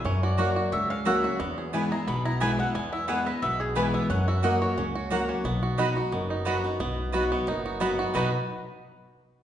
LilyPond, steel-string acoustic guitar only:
\new Staff \with { instrumentName = "Steel-string acoustic guitar" } { \time 4/4 \key b \major \tempo 4 = 178 << { r4 <fis ais fis'>4 r4 <fis ais cis' fis'>8 <cis' fis'>8 | r4 <e gis b e'>8 <b e'>8 r4 <e gis b e'>8 <b e'>8 | r4 <e gis b e'>8 <b e'>8 r4 <e gis b e'>4 | r4 <fis ais cis' fis'>4 r4 <fis ais cis' fis'>4 |
r4 <fis b dis' fis'>8 <dis' fis'>8 r4 <fis b dis' fis'>8 <dis' fis'>8 | r4 <fis b dis' fis'>4 r4 <fis b dis' fis'>8 <dis' fis'>8 | <b, fis b dis' fis'>8 r2. r8 | } \\ { fis,2 cis2 | e,2 b,2 | e,2 b,2 | fis,2 cis2 |
b,2 fis,2 | b,2 fis,2 | r1 | } >> }